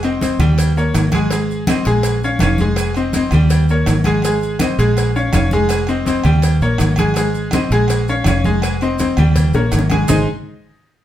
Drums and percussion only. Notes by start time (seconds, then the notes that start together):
0.03 high conga, low agogo, maracas
0.21 cowbell, high conga, low timbale, maracas
0.40 high conga, low conga, low agogo, claves, maracas
0.58 cowbell, high conga, low agogo, maracas
0.76 high conga, maracas
0.94 cowbell, high conga, low timbale, low agogo, maracas
1.12 cowbell, high conga, low agogo, claves, maracas
1.30 cowbell, high conga, low agogo, maracas
1.49 high conga, maracas
1.67 cowbell, high conga, low timbale, low agogo, claves, maracas
1.85 cowbell, maracas
2.03 cowbell, high conga, low agogo, maracas
2.22 high conga, maracas
2.39 cowbell, high conga, low timbale, low agogo, claves, maracas
2.58 high conga, maracas
2.76 cowbell, high conga, low agogo, claves, maracas
2.94 high conga, low agogo, maracas
3.13 cowbell, high conga, low timbale, maracas
3.31 high conga, low conga, low agogo, claves, maracas
3.50 cowbell, low agogo, maracas
3.68 high conga, maracas
3.86 cowbell, high conga, low timbale, low agogo, maracas
4.04 cowbell, high conga, low agogo, claves, maracas
4.22 cowbell, high conga, low agogo, maracas
4.41 high conga, maracas
4.59 cowbell, high conga, low timbale, low agogo, claves, maracas
4.79 cowbell, maracas
4.97 cowbell, high conga, low agogo, maracas
5.16 high conga, maracas
5.33 cowbell, high conga, low timbale, low agogo, claves, maracas
5.51 high conga, maracas
5.69 cowbell, high conga, low agogo, claves, maracas
5.87 high conga, low agogo, maracas
6.05 cowbell, high conga, low timbale, maracas
6.24 high conga, low conga, low agogo, claves, maracas
6.42 cowbell, high conga, low agogo, maracas
6.61 high conga, maracas
6.78 cowbell, low timbale, low agogo, maracas
6.96 cowbell, high conga, low agogo, claves, maracas
7.14 cowbell, high conga, low agogo, maracas
7.35 high conga, maracas
7.51 cowbell, high conga, low timbale, low agogo, claves, maracas
7.71 cowbell, maracas
7.88 cowbell, high conga, low agogo, maracas
8.08 high conga, maracas
8.24 cowbell, high conga, low timbale, low agogo, claves, maracas
8.44 high conga, maracas
8.62 cowbell, high conga, low agogo, claves, maracas
8.81 high conga, low agogo, maracas
8.99 cowbell, high conga, low timbale, maracas
9.17 high conga, low conga, low agogo, claves, maracas
9.36 cowbell, high conga, low conga, low agogo, maracas
9.53 high bongo, high conga, maracas
9.72 cowbell, high conga, low timbale, low agogo, maracas
9.79 low bongo
9.90 cowbell, low bongo, high conga, low agogo, claves, maracas
10.08 low bongo, low conga, low timbale, claves, maracas